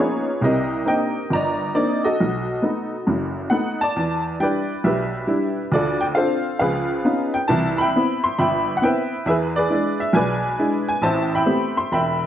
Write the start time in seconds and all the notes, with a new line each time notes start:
Already playing: A#3 B3 B4
0.00 F3 C#4 D#4 F4 G#4 C#5
0.41 C2 C3 G4 A#4 D#5
0.85 A#3 C4 D4 D#4 A#4 D#5 G5
1.30 G1 D5 D#5 A#5
1.75 A#3 C4 D4 D#4 D5
2.05 F#4 A4 D#5
2.20 B1
2.62 A3 B3 D#4
3.07 F#1 F#2
3.50 A3 B3 D#4 F#5
3.81 D5 A5
3.96 E2
4.40 G3 D4 E4 B4 D5 G5
4.84 B1 G4 B4 E5
5.27 G3 D4 E4
5.72 D2 F4 A4 D5
6.01 G5
6.15 C4 D4 F4 A4 C5 F5
6.59 C#2 F3 G#4 B4 F5
7.05 B3 C#4 D#4 F4
7.34 G5
7.48 C2 E3 E5 A5
7.78 E5 G5 B5
7.96 B3 C4 E4
8.24 C6
8.39 G1 E5 G5 B5
8.77 F#5
8.82 B3 C4 E4 B4 E5 G5
9.26 E2 G#4 B4 E5
9.56 G#4 B4 D5
9.70 G#3 D4 E4
10.00 E5
10.13 B1 B4 D5 G#5
10.59 G#3 D4 E4
10.88 G#5
11.02 A1 A2 C5 E5 A5
11.35 E5 G5 B5
11.46 A3 B3 C4 G4
11.77 C6
11.92 E1 E5 G5 B5